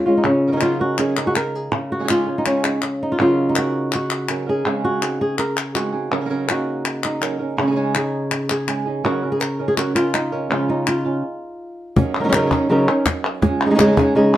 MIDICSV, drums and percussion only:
0, 0, Header, 1, 3, 480
1, 0, Start_track
1, 0, Key_signature, -5, "major"
1, 0, Tempo, 365854
1, 320, Time_signature, 4, 2, 24, 8
1, 18856, End_track
2, 0, Start_track
2, 0, Title_t, "Cajon"
2, 15698, Note_on_c, 9, 36, 86
2, 15829, Note_off_c, 9, 36, 0
2, 16171, Note_on_c, 9, 38, 100
2, 16303, Note_off_c, 9, 38, 0
2, 16414, Note_on_c, 9, 36, 74
2, 16546, Note_off_c, 9, 36, 0
2, 17131, Note_on_c, 9, 36, 63
2, 17131, Note_on_c, 9, 38, 93
2, 17262, Note_off_c, 9, 36, 0
2, 17262, Note_off_c, 9, 38, 0
2, 17366, Note_on_c, 9, 38, 27
2, 17497, Note_off_c, 9, 38, 0
2, 17611, Note_on_c, 9, 36, 91
2, 17611, Note_on_c, 9, 38, 29
2, 17743, Note_off_c, 9, 36, 0
2, 17743, Note_off_c, 9, 38, 0
2, 18089, Note_on_c, 9, 38, 93
2, 18220, Note_off_c, 9, 38, 0
2, 18331, Note_on_c, 9, 36, 72
2, 18462, Note_off_c, 9, 36, 0
2, 18856, End_track
3, 0, Start_track
3, 0, Title_t, "Drums"
3, 796, Note_on_c, 9, 39, 67
3, 927, Note_off_c, 9, 39, 0
3, 1282, Note_on_c, 9, 39, 68
3, 1414, Note_off_c, 9, 39, 0
3, 1533, Note_on_c, 9, 39, 68
3, 1664, Note_off_c, 9, 39, 0
3, 1776, Note_on_c, 9, 39, 66
3, 1907, Note_off_c, 9, 39, 0
3, 2739, Note_on_c, 9, 39, 74
3, 2870, Note_off_c, 9, 39, 0
3, 3222, Note_on_c, 9, 39, 69
3, 3354, Note_off_c, 9, 39, 0
3, 3462, Note_on_c, 9, 39, 67
3, 3594, Note_off_c, 9, 39, 0
3, 3701, Note_on_c, 9, 39, 65
3, 3832, Note_off_c, 9, 39, 0
3, 4665, Note_on_c, 9, 39, 76
3, 4796, Note_off_c, 9, 39, 0
3, 5146, Note_on_c, 9, 39, 69
3, 5277, Note_off_c, 9, 39, 0
3, 5385, Note_on_c, 9, 39, 71
3, 5516, Note_off_c, 9, 39, 0
3, 5623, Note_on_c, 9, 39, 65
3, 5754, Note_off_c, 9, 39, 0
3, 6586, Note_on_c, 9, 39, 68
3, 6718, Note_off_c, 9, 39, 0
3, 7065, Note_on_c, 9, 39, 66
3, 7196, Note_off_c, 9, 39, 0
3, 7304, Note_on_c, 9, 39, 71
3, 7436, Note_off_c, 9, 39, 0
3, 7549, Note_on_c, 9, 39, 65
3, 7680, Note_off_c, 9, 39, 0
3, 8509, Note_on_c, 9, 39, 71
3, 8640, Note_off_c, 9, 39, 0
3, 8989, Note_on_c, 9, 39, 69
3, 9120, Note_off_c, 9, 39, 0
3, 9231, Note_on_c, 9, 39, 70
3, 9362, Note_off_c, 9, 39, 0
3, 9468, Note_on_c, 9, 39, 64
3, 9600, Note_off_c, 9, 39, 0
3, 10426, Note_on_c, 9, 39, 70
3, 10557, Note_off_c, 9, 39, 0
3, 10906, Note_on_c, 9, 39, 70
3, 11037, Note_off_c, 9, 39, 0
3, 11149, Note_on_c, 9, 39, 71
3, 11280, Note_off_c, 9, 39, 0
3, 11388, Note_on_c, 9, 39, 66
3, 11519, Note_off_c, 9, 39, 0
3, 12348, Note_on_c, 9, 39, 77
3, 12479, Note_off_c, 9, 39, 0
3, 12827, Note_on_c, 9, 39, 71
3, 12959, Note_off_c, 9, 39, 0
3, 13068, Note_on_c, 9, 39, 70
3, 13199, Note_off_c, 9, 39, 0
3, 13302, Note_on_c, 9, 39, 69
3, 13433, Note_off_c, 9, 39, 0
3, 14261, Note_on_c, 9, 39, 73
3, 14392, Note_off_c, 9, 39, 0
3, 16177, Note_on_c, 9, 39, 82
3, 16308, Note_off_c, 9, 39, 0
3, 17135, Note_on_c, 9, 39, 75
3, 17266, Note_off_c, 9, 39, 0
3, 18094, Note_on_c, 9, 39, 83
3, 18225, Note_off_c, 9, 39, 0
3, 18856, End_track
0, 0, End_of_file